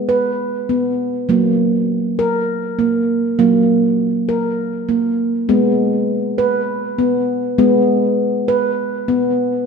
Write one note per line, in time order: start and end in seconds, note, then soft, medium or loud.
0.00 1.25 G#3 medium
0.09 0.69 B4 medium
0.69 1.29 B3 medium
1.29 3.35 F#3 medium
1.29 1.89 A#3 medium
2.19 2.79 A#4 medium
2.79 3.38 A#3 medium
3.39 5.45 F#3 medium
3.39 3.99 A#3 medium
4.29 4.89 A#4 medium
4.89 5.49 A#3 medium
5.49 7.55 G#3 medium
5.49 6.09 B3 medium
6.38 6.98 B4 medium
6.98 7.57 B3 medium
7.58 9.64 G#3 medium
7.58 8.19 B3 medium
8.48 9.08 B4 medium
9.08 9.66 B3 medium